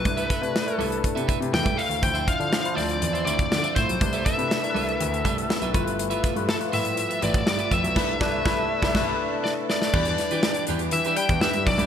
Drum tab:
CC |----------------|----------------|----------------|----------------|
HH |xxxx-xoxxxxx-xox|xxxx-xoxxxxx-xxx|xxxx-xoxxxxx-xxx|xxxx-xoxxxxx-xxx|
SD |--o-o-------o---|----o-o-----o---|----o-------o---|--o-o-o-----o---|
BD |o-o-----o-o--o--|o-o--------o--o-|o-o-------o---o-|--o--------o--o-|

CC |x-------x-------|x---------------|
HH |----------------|-xxx-xxxxxxx-xox|
SD |o-o-o--oo---o-oo|--o-o-------o---|
BD |o-o-o--oo-------|o----------o--o-|